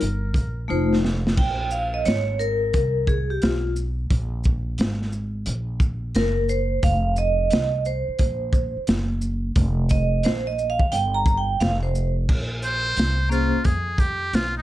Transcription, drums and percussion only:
0.01 closed hi-hat
0.34 kick, closed hi-hat, shaker
0.93 snare
1.05 snare
1.27 snare
1.37 kick, crash
1.71 shaker
2.05 snare, closed hi-hat
2.40 shaker
2.74 kick, closed hi-hat
3.07 kick, shaker
3.42 snare, closed hi-hat
3.76 shaker
4.10 kick, closed hi-hat
4.44 kick, shaker
4.78 snare, closed hi-hat
5.02 snare
5.13 shaker
5.46 closed hi-hat
5.80 kick, shaker
6.15 snare, closed hi-hat
6.49 shaker
6.83 kick, closed hi-hat
7.16 shaker
7.50 snare, closed hi-hat
7.85 shaker
8.19 kick, closed hi-hat
8.53 kick, shaker
8.87 snare, closed hi-hat
9.21 shaker
9.56 kick, closed hi-hat
9.89 kick, closed hi-hat, shaker
10.23 snare, closed hi-hat
10.59 shaker
10.79 kick
10.92 closed hi-hat
11.26 kick, shaker
11.61 snare, closed hi-hat
11.95 shaker
12.29 kick, crash
12.62 closed hi-hat, shaker
12.97 snare, closed hi-hat
13.32 shaker
13.64 kick, closed hi-hat
13.98 kick, closed hi-hat, shaker
14.33 snare, closed hi-hat

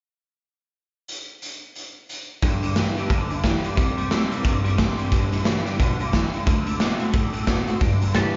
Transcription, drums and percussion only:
1.08 closed hi-hat
1.42 closed hi-hat
1.75 closed hi-hat
2.09 closed hi-hat
2.42 kick, snare, closed hi-hat
2.63 closed hi-hat
2.76 snare, closed hi-hat
2.97 closed hi-hat
3.10 kick, closed hi-hat
3.30 closed hi-hat
3.44 kick, snare, closed hi-hat
3.64 closed hi-hat
3.77 kick, closed hi-hat
3.98 closed hi-hat
4.11 snare, closed hi-hat
4.32 closed hi-hat
4.45 kick, closed hi-hat
4.65 closed hi-hat
4.78 kick, snare, closed hi-hat
4.99 closed hi-hat
5.12 kick, snare, closed hi-hat
5.32 snare, closed hi-hat
5.45 snare, closed hi-hat
5.66 snare, closed hi-hat
5.79 kick, closed hi-hat
6.00 closed hi-hat
6.13 kick, snare, closed hi-hat
6.33 closed hi-hat
6.47 kick, closed hi-hat
6.67 closed hi-hat
6.80 snare, closed hi-hat
7.00 closed hi-hat
7.13 kick, closed hi-hat
7.33 closed hi-hat
7.47 kick, snare, closed hi-hat
7.67 closed hi-hat
7.81 kick, closed hi-hat
8.02 closed hi-hat
8.15 snare, closed hi-hat

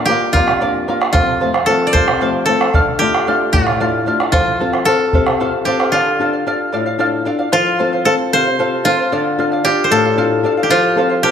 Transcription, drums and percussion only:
0.21 bombo rim
0.34 bombo low
0.48 bombo rim
0.75 bombo rim
0.88 bombo rim
1.02 bombo rim
1.14 bombo low
1.54 bombo rim
1.67 bombo rim
1.81 bombo rim
1.94 bombo low
2.08 bombo rim
2.61 bombo rim
2.74 bombo low
3.14 bombo rim
3.41 bombo rim
3.54 bombo low
3.67 bombo rim
4.20 bombo rim
4.33 bombo low
4.74 bombo rim
4.87 bombo rim
5.13 bombo low
5.27 bombo rim
5.80 bombo rim

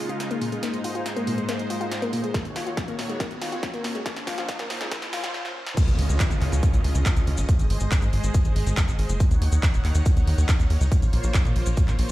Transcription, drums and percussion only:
0.09 closed hi-hat
0.20 snare, closed hi-hat
0.31 closed hi-hat
0.41 open hi-hat
0.52 closed hi-hat
0.63 snare, closed hi-hat
0.74 closed hi-hat
0.84 open hi-hat
0.95 closed hi-hat
1.06 snare, closed hi-hat
1.17 closed hi-hat
1.27 open hi-hat
1.38 closed hi-hat
1.49 snare, closed hi-hat
1.59 closed hi-hat
1.70 open hi-hat
1.81 closed hi-hat
1.92 snare, closed hi-hat
2.02 closed hi-hat
2.13 open hi-hat
2.24 closed hi-hat
2.34 kick, snare, closed hi-hat
2.45 closed hi-hat
2.56 snare, open hi-hat
2.67 closed hi-hat
2.77 kick, snare, closed hi-hat
2.88 closed hi-hat
2.99 snare, open hi-hat
3.09 closed hi-hat
3.20 kick, snare, closed hi-hat
3.31 closed hi-hat
3.42 snare, open hi-hat
3.52 closed hi-hat
3.63 kick, snare, closed hi-hat
3.74 closed hi-hat
3.84 snare, open hi-hat
3.95 closed hi-hat
4.06 kick, snare, closed hi-hat
4.16 snare, closed hi-hat
4.27 kick, snare, open hi-hat
4.38 snare, closed hi-hat
4.49 kick, snare, closed hi-hat
4.59 snare, closed hi-hat
4.70 snare, open hi-hat
4.81 snare, closed hi-hat
4.91 kick, snare, closed hi-hat
5.02 snare, closed hi-hat
5.13 snare, open hi-hat
5.24 snare, closed hi-hat
5.34 snare
5.45 snare
5.66 snare
5.77 kick, closed hi-hat, crash, maracas
5.88 closed hi-hat, maracas
5.99 open hi-hat
6.09 closed hi-hat, maracas
6.20 kick, clap, closed hi-hat, maracas
6.31 closed hi-hat, maracas
6.41 clap, open hi-hat
6.52 closed hi-hat, maracas
6.63 kick, closed hi-hat, maracas
6.74 closed hi-hat, maracas
6.84 open hi-hat
6.95 closed hi-hat, maracas
7.05 kick, clap, closed hi-hat, maracas
7.17 closed hi-hat, maracas
7.27 open hi-hat
7.37 closed hi-hat, maracas
7.49 kick, closed hi-hat, maracas
7.59 closed hi-hat, maracas
7.70 open hi-hat
7.80 closed hi-hat, maracas
7.92 kick, clap, closed hi-hat, maracas
8.02 closed hi-hat, maracas
8.13 open hi-hat
8.24 closed hi-hat, maracas
8.34 kick, closed hi-hat, maracas
8.45 closed hi-hat, maracas
8.56 open hi-hat
8.67 closed hi-hat, maracas
8.77 kick, clap, closed hi-hat, maracas
8.88 closed hi-hat, maracas
8.99 open hi-hat
9.09 closed hi-hat, maracas
9.20 kick, closed hi-hat, maracas
9.31 closed hi-hat, maracas
9.42 open hi-hat
9.52 closed hi-hat, maracas
9.63 kick, clap, closed hi-hat, maracas
9.74 closed hi-hat, maracas
9.85 clap, open hi-hat
9.95 closed hi-hat, maracas
10.06 kick, closed hi-hat, maracas
10.17 closed hi-hat, maracas
10.27 open hi-hat
10.38 closed hi-hat, maracas
10.48 kick, clap, closed hi-hat, maracas
10.60 closed hi-hat, maracas
10.70 open hi-hat
10.81 closed hi-hat, maracas
10.92 kick, closed hi-hat, maracas
11.02 closed hi-hat, maracas
11.13 open hi-hat
11.23 closed hi-hat, maracas
11.34 kick, clap, closed hi-hat, maracas
11.45 closed hi-hat, maracas
11.56 open hi-hat
11.66 closed hi-hat, maracas
11.77 kick, closed hi-hat, maracas
11.88 clap, closed hi-hat, maracas
11.99 open hi-hat

